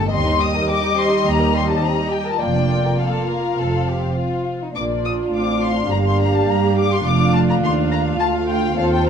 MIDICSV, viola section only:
0, 0, Header, 1, 2, 480
1, 0, Start_track
1, 0, Key_signature, -2, "major"
1, 0, Tempo, 567108
1, 112, Time_signature, 4, 2, 24, 8
1, 1552, Tempo, 584795
1, 4432, Tempo, 571973
1, 7581, End_track
2, 0, Start_track
2, 0, Title_t, "Viola section"
2, 0, Program_c, 0, 48
2, 0, Note_on_c, 0, 57, 61
2, 108, Note_off_c, 0, 57, 0
2, 113, Note_on_c, 0, 55, 66
2, 113, Note_on_c, 0, 67, 58
2, 1996, Note_off_c, 0, 55, 0
2, 1996, Note_off_c, 0, 67, 0
2, 2029, Note_on_c, 0, 65, 51
2, 2031, Note_on_c, 0, 58, 49
2, 2968, Note_off_c, 0, 58, 0
2, 2989, Note_on_c, 0, 60, 45
2, 3753, Note_off_c, 0, 65, 0
2, 3787, Note_off_c, 0, 60, 0
2, 3949, Note_on_c, 0, 65, 45
2, 3951, Note_on_c, 0, 58, 46
2, 4398, Note_off_c, 0, 58, 0
2, 4430, Note_on_c, 0, 60, 44
2, 4879, Note_off_c, 0, 65, 0
2, 4914, Note_off_c, 0, 60, 0
2, 4918, Note_on_c, 0, 58, 53
2, 4920, Note_on_c, 0, 67, 53
2, 5877, Note_on_c, 0, 62, 58
2, 5880, Note_on_c, 0, 57, 59
2, 5882, Note_off_c, 0, 58, 0
2, 5883, Note_off_c, 0, 67, 0
2, 6819, Note_off_c, 0, 62, 0
2, 6827, Note_off_c, 0, 57, 0
2, 6837, Note_on_c, 0, 57, 61
2, 6837, Note_on_c, 0, 65, 56
2, 7295, Note_off_c, 0, 65, 0
2, 7304, Note_off_c, 0, 57, 0
2, 7305, Note_on_c, 0, 60, 58
2, 7305, Note_on_c, 0, 65, 58
2, 7581, Note_off_c, 0, 60, 0
2, 7581, Note_off_c, 0, 65, 0
2, 7581, End_track
0, 0, End_of_file